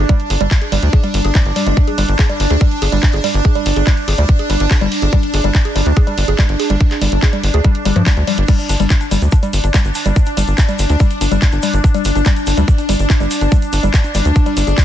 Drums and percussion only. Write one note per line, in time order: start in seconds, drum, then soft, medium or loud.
0.09 kick loud
0.09 closed hi-hat medium
0.20 closed hi-hat soft
0.30 open hi-hat loud
0.41 closed hi-hat medium
0.51 kick loud
0.51 clap loud
0.51 closed hi-hat medium
0.62 closed hi-hat medium
0.72 open hi-hat loud
0.83 closed hi-hat medium
0.93 kick loud
0.93 closed hi-hat medium
1.04 closed hi-hat medium
1.14 open hi-hat loud
1.25 closed hi-hat medium
1.35 kick loud
1.35 clap loud
1.35 closed hi-hat medium
1.46 closed hi-hat medium
1.56 open hi-hat loud
1.67 closed hi-hat medium
1.77 kick loud
1.77 closed hi-hat medium
1.88 closed hi-hat soft
1.98 open hi-hat loud
2.08 closed hi-hat medium
2.19 kick loud
2.19 clap loud
2.19 closed hi-hat medium
2.29 closed hi-hat medium
2.40 open hi-hat loud
2.50 closed hi-hat medium
2.61 kick loud
2.61 closed hi-hat medium
2.71 closed hi-hat medium
2.82 open hi-hat loud
2.92 closed hi-hat medium
3.03 kick loud
3.03 clap loud
3.03 closed hi-hat medium
3.13 closed hi-hat medium
3.24 open hi-hat loud
3.34 closed hi-hat medium
3.45 kick loud
3.45 closed hi-hat medium
3.55 closed hi-hat medium
3.66 open hi-hat loud
3.76 closed hi-hat medium
3.87 kick loud
3.87 clap loud
3.87 closed hi-hat medium
3.97 closed hi-hat medium
4.08 open hi-hat loud
4.18 closed hi-hat medium
4.29 kick loud
4.29 closed hi-hat medium
4.39 closed hi-hat medium
4.50 open hi-hat loud
4.60 closed hi-hat medium
4.71 kick loud
4.71 clap loud
4.71 closed hi-hat medium
4.81 closed hi-hat medium
4.92 open hi-hat loud
5.02 closed hi-hat medium
5.13 kick loud
5.13 closed hi-hat medium
5.23 closed hi-hat medium
5.34 open hi-hat loud
5.44 closed hi-hat medium
5.55 kick loud
5.55 clap loud
5.55 closed hi-hat medium
5.65 closed hi-hat medium
5.76 open hi-hat loud
5.86 closed hi-hat medium
5.97 kick loud
5.97 closed hi-hat medium
6.07 closed hi-hat medium
6.18 open hi-hat loud
6.28 closed hi-hat medium
6.39 kick loud
6.39 clap loud
6.39 closed hi-hat medium
6.49 closed hi-hat medium
6.60 open hi-hat loud
6.70 closed hi-hat medium
6.81 kick loud
6.81 closed hi-hat medium
6.91 clap soft
6.91 closed hi-hat medium
7.02 open hi-hat loud
7.12 closed hi-hat medium
7.22 kick loud
7.22 clap loud
7.22 closed hi-hat medium
7.33 closed hi-hat medium
7.43 open hi-hat loud
7.54 closed hi-hat medium
7.64 kick loud
7.64 closed hi-hat medium
7.75 closed hi-hat medium
7.85 open hi-hat loud
7.96 closed hi-hat medium
8.06 kick loud
8.06 clap loud
8.06 closed hi-hat medium
8.17 closed hi-hat medium
8.27 open hi-hat loud
8.38 closed hi-hat medium
8.48 kick loud
8.48 closed hi-hat medium
8.48 crash medium
8.48 shaker medium
8.59 closed hi-hat medium
8.59 shaker soft
8.69 open hi-hat loud
8.69 shaker medium
8.80 closed hi-hat medium
8.80 shaker soft
8.90 kick loud
8.90 clap loud
8.90 closed hi-hat medium
8.90 shaker medium
9.01 closed hi-hat medium
9.01 shaker soft
9.11 open hi-hat loud
9.11 shaker medium
9.22 closed hi-hat medium
9.22 shaker soft
9.31 kick loud
9.31 closed hi-hat medium
9.31 shaker medium
9.43 closed hi-hat medium
9.43 shaker soft
9.53 open hi-hat loud
9.53 shaker medium
9.64 closed hi-hat medium
9.64 shaker soft
9.74 kick loud
9.74 clap loud
9.74 closed hi-hat medium
9.74 shaker medium
9.85 closed hi-hat medium
9.85 shaker soft
9.95 open hi-hat loud
9.95 shaker medium
10.05 closed hi-hat medium
10.05 shaker soft
10.16 kick loud
10.16 closed hi-hat medium
10.16 shaker medium
10.26 closed hi-hat medium
10.26 shaker soft
10.37 open hi-hat loud
10.37 shaker medium
10.47 closed hi-hat medium
10.47 shaker soft
10.58 kick loud
10.58 clap loud
10.58 closed hi-hat medium
10.58 shaker medium
10.68 closed hi-hat medium
10.68 shaker soft
10.79 open hi-hat loud
10.79 shaker loud
10.89 closed hi-hat medium
10.89 shaker soft
11.00 kick loud
11.00 closed hi-hat medium
11.00 shaker medium
11.10 closed hi-hat medium
11.10 shaker soft
11.21 open hi-hat loud
11.21 shaker medium
11.31 closed hi-hat medium
11.31 shaker soft
11.42 kick loud
11.42 clap loud
11.42 closed hi-hat medium
11.42 shaker medium
11.52 closed hi-hat medium
11.52 shaker soft
11.63 open hi-hat loud
11.63 shaker loud
11.74 closed hi-hat medium
11.74 shaker soft
11.84 kick loud
11.84 closed hi-hat medium
11.84 shaker medium
11.94 closed hi-hat medium
11.94 shaker soft
12.05 open hi-hat loud
12.05 shaker loud
12.15 closed hi-hat medium
12.15 shaker soft
12.26 kick loud
12.26 clap loud
12.26 closed hi-hat medium
12.26 shaker medium
12.36 closed hi-hat medium
12.36 shaker soft
12.46 open hi-hat loud
12.46 shaker loud
12.57 closed hi-hat medium
12.57 shaker soft
12.68 kick loud
12.68 closed hi-hat medium
12.68 shaker medium
12.78 closed hi-hat medium
12.78 shaker soft
12.89 open hi-hat loud
12.89 shaker medium
12.99 closed hi-hat soft
12.99 shaker soft
13.10 kick loud
13.10 clap loud
13.10 closed hi-hat medium
13.10 shaker medium
13.20 closed hi-hat medium
13.20 shaker soft
13.31 open hi-hat loud
13.31 shaker loud
13.41 closed hi-hat medium
13.41 shaker soft
13.52 kick loud
13.52 closed hi-hat medium
13.52 shaker medium
13.62 closed hi-hat soft
13.62 shaker soft
13.73 open hi-hat loud
13.73 shaker loud
13.83 closed hi-hat medium
13.83 shaker soft
13.94 kick loud
13.94 clap loud
13.94 closed hi-hat medium
13.94 shaker medium
14.04 closed hi-hat medium
14.04 shaker soft
14.15 open hi-hat loud
14.15 shaker loud
14.25 closed hi-hat medium
14.25 shaker soft
14.36 kick loud
14.36 closed hi-hat medium
14.36 shaker medium
14.46 closed hi-hat medium
14.46 shaker soft
14.57 open hi-hat loud
14.57 shaker medium
14.67 closed hi-hat medium
14.67 shaker soft
14.78 kick loud
14.78 clap loud
14.78 closed hi-hat medium
14.78 shaker medium